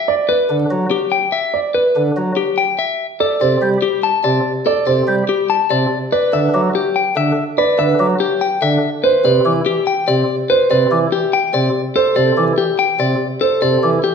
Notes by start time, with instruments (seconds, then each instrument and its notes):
Already playing: clean electric guitar E5
0.08 grand piano D5
0.29 clean electric guitar B4, grand piano B4
0.50 pipe organ D3
0.71 pipe organ F#3
0.91 clean electric guitar G4
1.12 clean electric guitar G5
1.32 clean electric guitar E5
1.54 grand piano D5
1.74 clean electric guitar B4, grand piano B4
1.96 pipe organ D3
2.17 pipe organ F#3
2.37 clean electric guitar G4
2.58 clean electric guitar G5
2.79 clean electric guitar E5
3.20 clean electric guitar A4, grand piano D5
3.41 pipe organ C3, grand piano C5, clean electric guitar D5
3.62 pipe organ G3, flute G6
3.82 clean electric guitar G4
4.03 clean electric guitar A5
4.24 pipe organ C3, clean electric guitar D5
4.66 clean electric guitar A4, grand piano D5
4.87 pipe organ C3, grand piano C5, clean electric guitar D5
5.08 pipe organ G3, flute G6
5.29 clean electric guitar G4
5.50 clean electric guitar A5
5.70 pipe organ C3, clean electric guitar D5
6.12 clean electric guitar B4, grand piano D5
6.33 pipe organ D3, grand piano B4, clean electric guitar E5
6.54 pipe organ F#3, flute D6
6.75 clean electric guitar G4
6.96 clean electric guitar G5
7.16 pipe organ D3, clean electric guitar E5
7.58 clean electric guitar B4, grand piano D5
7.78 pipe organ D3, grand piano B4, clean electric guitar E5
7.99 pipe organ F#3, flute D6
8.20 clean electric guitar G4
8.41 clean electric guitar G5
8.62 pipe organ D3, clean electric guitar E5
9.04 clean electric guitar B4, grand piano C5
9.24 pipe organ C3, grand piano B4, clean electric guitar D5
9.45 pipe organ E3, flute D6
9.66 clean electric guitar G4
9.87 clean electric guitar G5
10.08 pipe organ C3, clean electric guitar D5
10.50 clean electric guitar B4, grand piano C5
10.71 pipe organ C3, grand piano B4, clean electric guitar D5
10.91 pipe organ E3, flute D6
11.12 clean electric guitar G4
11.33 clean electric guitar G5
11.54 pipe organ C3, clean electric guitar D5
11.96 clean electric guitar A4, grand piano C5
12.16 pipe organ C3, grand piano A4, clean electric guitar D5
12.37 pipe organ E3, flute D6
12.58 clean electric guitar G4
12.79 clean electric guitar G5
12.99 pipe organ C3, clean electric guitar D5
13.41 clean electric guitar A4, grand piano C5
13.62 pipe organ C3, grand piano A4, clean electric guitar D5
13.83 pipe organ E3, flute D6
14.04 clean electric guitar G4